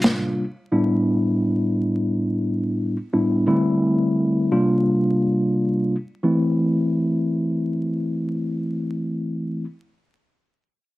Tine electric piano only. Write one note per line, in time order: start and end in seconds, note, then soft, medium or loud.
0.00 0.43 C3 medium
0.00 0.43 G3 medium
0.00 0.43 A#3 medium
0.00 0.43 D4 medium
0.00 0.43 F4 loud
0.72 2.96 A2 medium
0.72 2.96 G3 medium
0.72 2.96 B3 medium
0.72 2.96 D4 medium
0.72 2.96 E4 loud
3.13 3.45 A2 medium
3.13 3.45 G3 medium
3.13 3.45 B3 medium
3.13 3.45 D4 medium
3.13 3.45 E4 medium
3.47 4.51 D3 medium
3.47 4.50 G3 medium
3.47 4.51 A3 medium
3.47 4.51 C4 medium
3.47 4.51 E4 loud
4.51 5.95 C3 medium
4.51 5.95 G3 medium
4.51 5.95 A#3 medium
4.51 5.95 D4 medium
4.51 5.95 F4 loud
6.23 9.64 E3 medium
6.23 9.64 A3 medium
6.23 9.64 C4 medium
6.23 9.65 E4 medium